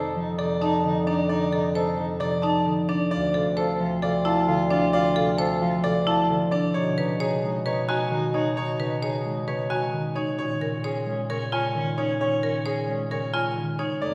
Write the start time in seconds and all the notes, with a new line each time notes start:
Already playing: F2 C3 A4 C5
0.15 F3 D#4
0.38 C3 D#4 A4 D5
0.61 D#4 A5
0.83 D3 D#4
1.07 D4 D#4 D5
1.29 D#4 D5
1.52 C3 D#4 A4
1.75 D#4 A4 C5
1.97 F3 D#4
2.20 C3 D#4 A4 D5
2.42 D#4 A5
2.65 D3 D#4
2.89 D4 D5
3.11 D2 F4 D5
3.34 C3 F4 A4
3.57 F4 A4 C5
3.79 F3 F4
4.02 C3 F4 A4 D5
4.25 E4 F4 A5
4.47 D3 F4
4.70 D4 F4 D5
4.93 F4 D5
5.16 C3 F4 A4
5.38 F4 A4 C5
5.61 F3 F4
5.84 C3 F4 A4 D5
6.06 E4 F4 A5
6.29 D3 F4
6.51 D4 D5
6.74 B2 D#4 C#5
6.97 C#3 D#4 B4
7.20 D#4 G#4 C#5
7.43 G#3 D#4
7.65 C#3 D#4 B4 C#5
7.88 D#4 F#4 G#5
8.11 D#3 D#4
8.33 D#4 C#5
8.57 D#4 C#5
8.79 C#3 D#4 B4
9.02 D#4 G#4 C#5
9.25 G#3 D#4
9.47 C#3 D#4 B4 C#5
9.70 D#4 F#4 G#5
9.93 D#3 D#4
10.15 D#4 C#5
10.38 A#2 C#4 C#5
10.61 C#3 C#4 A#4
10.84 C#4 G#4 C#5
11.06 G#3 C#4
11.29 C#3 C#4 A#4 C#5
11.52 C#4 F4 G#5
11.75 D#3 C#4
11.97 C#4 D#4 C#5
12.21 C#4 C#5
12.43 C#3 C#4 A#4
12.66 C#4 G#4 C#5
12.88 G#3 C#4
13.11 C#3 C#4 A#4 C#5
13.34 C#4 F4 G#5
13.56 D#3 C#4
13.79 D#4 C#5
14.01 F2 A3 D#4 D5